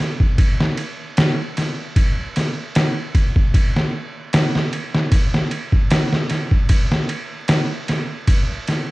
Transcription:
0.00 snare
0.20 kick
0.38 kick, ride
0.60 snare
0.77 ride
1.17 snare, ride
1.57 snare, ride
1.96 kick, ride
2.36 snare, ride
2.75 snare, ride
3.15 kick, ride
3.36 kick
3.54 kick, ride
3.76 snare
4.33 snare, ride
4.55 snare
4.73 ride
4.94 snare
5.12 kick, ride
5.34 snare
5.51 ride
5.72 kick
5.91 snare, ride
6.13 snare
6.30 snare, ride
6.51 kick
6.69 kick, ride
6.92 snare
7.09 ride
7.48 snare, ride
7.88 snare, ride
8.27 kick, ride
8.67 snare, ride

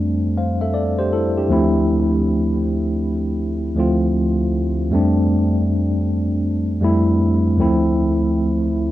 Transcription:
Already playing: F2 G3 A3 C4 D4
0.37 C5 F5
0.61 A4 E5
0.74 A4 D5
0.99 G4 C5
1.13 E4 A4
1.38 D4 G4
1.49 D2 F3 A3 C4
1.53 E4
3.76 D2 F3 A3 C4
3.80 F4
4.91 F2 G3 A3 C4
4.95 D4
6.80 F2 G3 A3 C4
6.84 E4
7.57 D2 F3 A3 C4
7.62 E4

